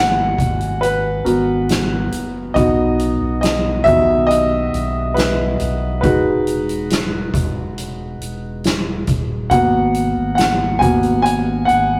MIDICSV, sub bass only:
0, 0, Header, 1, 2, 480
1, 0, Start_track
1, 0, Key_signature, 5, "minor"
1, 0, Tempo, 869565
1, 1411, Time_signature, 4, 2, 24, 8
1, 6623, End_track
2, 0, Start_track
2, 0, Title_t, "Sub bass"
2, 0, Program_c, 0, 38
2, 0, Note_on_c, 0, 32, 97
2, 190, Note_off_c, 0, 32, 0
2, 213, Note_on_c, 0, 32, 82
2, 670, Note_off_c, 0, 32, 0
2, 692, Note_on_c, 0, 32, 100
2, 1149, Note_off_c, 0, 32, 0
2, 1172, Note_on_c, 0, 30, 103
2, 1395, Note_off_c, 0, 30, 0
2, 1415, Note_on_c, 0, 35, 105
2, 1751, Note_off_c, 0, 35, 0
2, 1771, Note_on_c, 0, 35, 87
2, 2109, Note_off_c, 0, 35, 0
2, 2132, Note_on_c, 0, 35, 77
2, 2589, Note_off_c, 0, 35, 0
2, 2613, Note_on_c, 0, 35, 93
2, 3070, Note_off_c, 0, 35, 0
2, 3095, Note_on_c, 0, 35, 106
2, 3330, Note_on_c, 0, 28, 102
2, 3339, Note_off_c, 0, 35, 0
2, 4029, Note_off_c, 0, 28, 0
2, 4051, Note_on_c, 0, 28, 80
2, 4509, Note_off_c, 0, 28, 0
2, 4531, Note_on_c, 0, 28, 92
2, 4989, Note_off_c, 0, 28, 0
2, 5011, Note_on_c, 0, 27, 78
2, 5252, Note_on_c, 0, 32, 93
2, 5260, Note_off_c, 0, 27, 0
2, 5589, Note_off_c, 0, 32, 0
2, 5613, Note_on_c, 0, 32, 78
2, 5950, Note_off_c, 0, 32, 0
2, 5970, Note_on_c, 0, 32, 83
2, 6428, Note_off_c, 0, 32, 0
2, 6452, Note_on_c, 0, 32, 91
2, 6623, Note_off_c, 0, 32, 0
2, 6623, End_track
0, 0, End_of_file